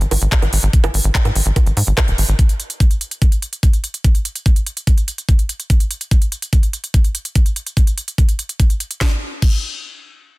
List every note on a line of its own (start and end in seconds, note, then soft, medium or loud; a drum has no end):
0.01 0.07 G#1 medium
0.01 closed hi-hat medium
0.11 0.17 G#1 loud
0.11 open hi-hat loud
0.11 high bongo soft
0.22 0.28 G#1 medium
0.22 closed hi-hat medium
0.32 kick loud
0.32 clap loud
0.32 closed hi-hat medium
0.42 0.48 G#1 medium
0.42 closed hi-hat soft
0.42 high bongo soft
0.53 0.59 G#1 loud
0.53 open hi-hat loud
0.63 0.69 G#1 loud
0.63 closed hi-hat medium
0.73 kick loud
0.73 closed hi-hat medium
0.84 0.90 G#1 medium
0.84 closed hi-hat medium
0.84 high bongo medium
0.94 1.00 G#1 medium
0.94 open hi-hat loud
1.04 1.11 G#1 medium
1.04 closed hi-hat soft
1.15 kick loud
1.15 clap loud
1.15 closed hi-hat medium
1.25 1.31 G#2 medium
1.25 closed hi-hat soft
1.25 high bongo soft
1.35 1.42 G#1 loud
1.35 open hi-hat loud
1.46 1.52 G#1 medium
1.46 closed hi-hat soft
1.56 kick loud
1.56 closed hi-hat medium
1.56 high bongo soft
1.66 1.73 G#1 medium
1.66 closed hi-hat soft
1.77 1.83 G#2 loud
1.77 open hi-hat loud
1.87 1.93 G#1 medium
1.87 closed hi-hat medium
1.98 kick loud
1.98 clap loud
1.98 closed hi-hat medium
1.98 high bongo medium
2.08 2.14 D#1 medium
2.08 closed hi-hat soft
2.18 2.24 G#1 medium
2.18 open hi-hat loud
2.29 2.35 G#1 medium
2.29 closed hi-hat soft
2.39 kick loud
2.39 closed hi-hat medium
2.49 closed hi-hat medium
2.60 closed hi-hat medium
2.70 closed hi-hat medium
2.80 kick loud
2.80 closed hi-hat medium
2.91 closed hi-hat soft
3.01 closed hi-hat medium
3.11 closed hi-hat medium
3.22 kick loud
3.22 closed hi-hat medium
3.32 closed hi-hat soft
3.42 closed hi-hat medium
3.53 closed hi-hat soft
3.63 kick loud
3.63 closed hi-hat medium
3.73 closed hi-hat soft
3.84 closed hi-hat medium
3.94 closed hi-hat soft
4.04 kick loud
4.04 closed hi-hat medium
4.15 closed hi-hat soft
4.25 closed hi-hat medium
4.35 closed hi-hat medium
4.46 kick loud
4.46 closed hi-hat medium
4.56 closed hi-hat medium
4.66 closed hi-hat medium
4.77 closed hi-hat medium
4.87 kick loud
4.87 closed hi-hat medium
4.98 closed hi-hat medium
5.08 closed hi-hat medium
5.18 closed hi-hat soft
5.29 kick loud
5.29 closed hi-hat medium
5.39 closed hi-hat soft
5.49 closed hi-hat medium
5.60 closed hi-hat soft
5.70 kick loud
5.70 closed hi-hat medium
5.80 closed hi-hat medium
5.91 closed hi-hat medium
6.01 closed hi-hat medium
6.11 kick loud
6.11 closed hi-hat medium
6.22 closed hi-hat medium
6.32 closed hi-hat medium
6.42 closed hi-hat medium
6.53 kick loud
6.53 closed hi-hat medium
6.63 closed hi-hat soft
6.73 closed hi-hat medium
6.84 closed hi-hat medium
6.94 kick loud
6.94 closed hi-hat medium
7.04 closed hi-hat soft
7.15 closed hi-hat medium
7.25 closed hi-hat medium
7.35 kick loud
7.35 closed hi-hat medium
7.46 closed hi-hat medium
7.56 closed hi-hat medium
7.67 closed hi-hat medium
7.77 kick loud
7.77 closed hi-hat medium
7.87 closed hi-hat medium
7.98 closed hi-hat medium
8.08 closed hi-hat medium
8.18 kick loud
8.18 closed hi-hat medium
8.29 closed hi-hat medium
8.39 closed hi-hat medium
8.49 closed hi-hat medium
8.60 kick loud
8.60 closed hi-hat medium
8.70 closed hi-hat medium
8.80 closed hi-hat medium
8.91 closed hi-hat medium
9.01 kick loud
9.01 snare medium
9.42 kick loud
9.42 crash medium